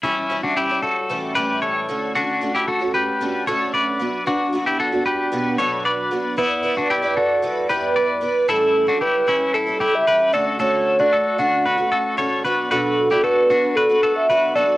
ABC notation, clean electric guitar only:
X:1
M:4/4
L:1/16
Q:1/4=114
K:Amix
V:1 name="Clean electric guitar"
[CE]3 [DF] [EG]2 [FA]4 [GB]2 [Ac]4 | [DF]3 [EG] [FA]2 [GB]4 [Ac]2 [Bd]4 | [DF]3 [EG] [FA]2 [GB]4 [Ac]2 [Bd]4 | [B,E]3 [DF] [EG]2 [FA]4 [GB]2 [Bd]4 |
[EA]3 [DF] [EG]2 [CE]2 [EA]2 [EG]2 [GB]2 [FA]2 | [FA]3 [DF] [FA]2 [DF]2 [FB]2 [FA]2 [Ac]2 [FB]2 | [FB]3 [EG] [FA]2 [DF]2 [FB]2 [FA]2 [FB]2 [FA]2 |]